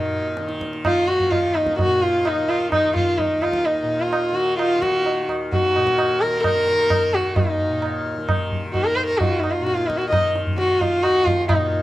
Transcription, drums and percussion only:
0.37 tabla te
0.49 tabla te
0.61 tabla ke
0.73 tabla te
0.85 tabla na, tabla ge
1.08 tabla te
1.20 tabla ge
1.32 tabla tin, tabla ge
1.55 tabla na
1.67 tabla ke
1.79 tabla tin, tabla ge
2.25 tabla na
2.49 tabla na
2.72 tabla na, tabla ge
2.96 tabla ge
3.19 tabla tin, tabla ge
3.42 tabla na
3.53 tabla ke
3.66 tabla tin
4.13 tabla na
4.59 tabla na
4.82 tabla ke
5.06 tabla tin
5.29 tabla na
5.53 tabla tin, tabla ge
5.76 tabla na
5.87 tabla ke
5.98 tabla na
6.44 tabla na, tabla ge
6.67 tabla te
6.90 tabla na, tabla ge
7.14 tabla te
7.36 tabla tin, tabla ge
7.82 tabla na
8.29 tabla na, tabla ge
8.52 tabla ge
8.74 tabla tin, tabla ge
9.21 tabla tin, tabla ge
9.44 tabla na
9.67 tabla te
9.78 tabla te
9.90 tabla ke
10.02 tabla te
10.13 tabla na, tabla ge
10.36 tabla te
10.47 tabla ge
10.58 tabla te
10.81 tabla tin, tabla ge
11.03 tabla na
11.27 tabla tin, tabla ge
11.49 tabla na, tabla ge

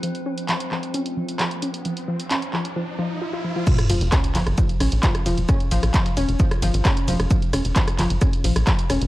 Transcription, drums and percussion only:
0.03 closed hi-hat
0.15 closed hi-hat
0.38 closed hi-hat
0.49 clap, closed hi-hat
0.60 closed hi-hat
0.71 clap
0.83 closed hi-hat
0.94 closed hi-hat
1.06 closed hi-hat
1.29 closed hi-hat
1.40 clap, closed hi-hat
1.51 closed hi-hat
1.62 closed hi-hat
1.74 closed hi-hat
1.85 closed hi-hat
1.97 closed hi-hat
2.20 closed hi-hat
2.31 clap, closed hi-hat
2.42 closed hi-hat
2.53 clap
2.65 closed hi-hat
3.67 kick, closed hi-hat, ride, crash, shaker
3.79 cross-stick, closed hi-hat
3.90 open hi-hat, ride, shaker
4.01 closed hi-hat
4.12 kick, cross-stick, snare, clap, closed hi-hat, ride, shaker
4.24 closed hi-hat
4.35 clap, open hi-hat, ride, shaker
4.47 cross-stick, closed hi-hat
4.58 kick, closed hi-hat, ride, shaker
4.69 closed hi-hat
4.80 cross-stick, open hi-hat, ride
4.92 closed hi-hat
5.03 kick, snare, clap, closed hi-hat, ride, shaker
5.15 cross-stick, closed hi-hat
5.26 open hi-hat, ride, shaker
5.38 closed hi-hat
5.49 kick, cross-stick, closed hi-hat, ride, shaker
5.60 closed hi-hat
5.71 snare, open hi-hat, ride, shaker
5.83 cross-stick, closed hi-hat
5.94 kick, snare, clap, closed hi-hat, ride, shaker
6.06 snare, closed hi-hat
6.17 open hi-hat, ride, shaker
6.29 closed hi-hat
6.40 kick, closed hi-hat, ride, shaker
6.51 cross-stick, closed hi-hat
6.62 snare, open hi-hat, ride, shaker
6.74 closed hi-hat
6.85 kick, cross-stick, snare, clap, closed hi-hat, ride, shaker
6.97 closed hi-hat
7.08 snare, open hi-hat, ride, shaker
7.20 cross-stick, closed hi-hat
7.31 kick, closed hi-hat, ride, shaker
7.42 closed hi-hat
7.53 cross-stick, open hi-hat, ride, shaker
7.65 closed hi-hat
7.76 kick, snare, clap, closed hi-hat, ride, shaker
7.88 cross-stick, closed hi-hat
7.99 clap, open hi-hat, ride, shaker
8.10 closed hi-hat
8.21 kick, cross-stick, closed hi-hat, ride, shaker
8.33 closed hi-hat
8.44 open hi-hat, ride
8.56 cross-stick, closed hi-hat
8.67 kick, snare, clap, closed hi-hat, ride, shaker
8.79 closed hi-hat
8.90 cross-stick, open hi-hat, ride, shaker
9.01 closed hi-hat

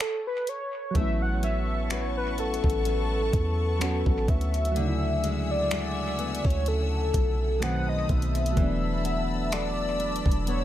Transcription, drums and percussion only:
0.00 finger snap, closed hi-hat
0.47 closed hi-hat
0.95 kick, closed hi-hat
1.43 closed hi-hat
1.90 finger snap, closed hi-hat
2.38 closed hi-hat
2.54 closed hi-hat
2.64 kick
2.70 closed hi-hat
2.85 closed hi-hat
3.33 kick, closed hi-hat
3.81 finger snap, closed hi-hat
4.06 kick
4.28 kick, closed hi-hat
4.41 closed hi-hat
4.54 closed hi-hat
4.65 closed hi-hat
4.76 closed hi-hat
5.24 closed hi-hat
5.71 finger snap, closed hi-hat
6.19 closed hi-hat
6.35 closed hi-hat
6.45 kick
6.50 closed hi-hat
6.66 closed hi-hat
7.14 kick, closed hi-hat
7.62 finger snap, closed hi-hat
8.09 kick, closed hi-hat
8.22 closed hi-hat
8.35 closed hi-hat
8.46 closed hi-hat
8.57 kick, closed hi-hat
9.05 closed hi-hat
9.52 finger snap, closed hi-hat
10.00 closed hi-hat
10.16 closed hi-hat
10.26 kick
10.32 closed hi-hat
10.47 closed hi-hat

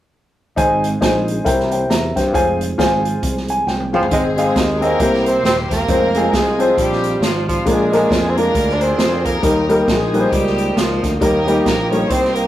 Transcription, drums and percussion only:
0.57 kick, closed hi-hat
0.84 closed hi-hat
1.02 kick, snare, closed hi-hat
1.28 closed hi-hat
1.46 kick, closed hi-hat
1.60 snare
1.71 closed hi-hat
1.90 snare, closed hi-hat
2.17 kick, snare, closed hi-hat
2.34 kick, closed hi-hat
2.61 closed hi-hat
2.79 kick, snare, closed hi-hat
3.05 closed hi-hat
3.23 kick, closed hi-hat
3.37 snare
3.48 closed hi-hat
3.67 snare
3.80 high tom
3.94 mid tom
4.03 floor tom
4.11 kick, closed hi-hat
4.38 closed hi-hat
4.56 kick, snare, closed hi-hat
4.82 closed hi-hat
5.00 kick, closed hi-hat
5.14 snare
5.26 closed hi-hat
5.45 snare, closed hi-hat
5.71 kick, snare, closed hi-hat
5.88 kick, closed hi-hat
6.15 closed hi-hat
6.33 kick, snare, closed hi-hat
6.60 closed hi-hat
6.78 kick, closed hi-hat
6.92 snare
7.04 closed hi-hat
7.22 snare, closed hi-hat
7.49 kick, closed hi-hat
7.66 kick, closed hi-hat
7.93 closed hi-hat
8.11 kick, snare, closed hi-hat
8.37 closed hi-hat
8.55 kick, closed hi-hat
8.69 snare
8.81 closed hi-hat
8.99 snare, closed hi-hat
9.25 kick, closed hi-hat
9.43 kick, closed hi-hat
9.70 closed hi-hat
9.88 kick, snare, closed hi-hat
10.14 closed hi-hat
10.32 kick, closed hi-hat
10.47 snare
10.58 closed hi-hat
10.77 snare, closed hi-hat
11.04 kick, snare, closed hi-hat
11.21 kick, closed hi-hat
11.48 closed hi-hat
11.66 kick, snare, closed hi-hat
11.92 closed hi-hat
12.10 kick, closed hi-hat
12.24 snare
12.35 closed hi-hat

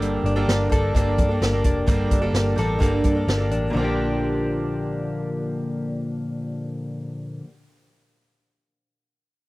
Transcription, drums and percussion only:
0.02 closed hi-hat
0.26 closed hi-hat
0.49 snare, closed hi-hat
0.72 kick, closed hi-hat
0.95 kick, closed hi-hat
1.18 kick, closed hi-hat
1.42 snare, closed hi-hat
1.64 kick, closed hi-hat
1.87 kick, closed hi-hat
2.11 kick, closed hi-hat
2.34 snare, closed hi-hat
2.58 snare, closed hi-hat
2.81 kick, closed hi-hat
3.04 kick, closed hi-hat
3.28 snare, closed hi-hat
3.51 closed hi-hat

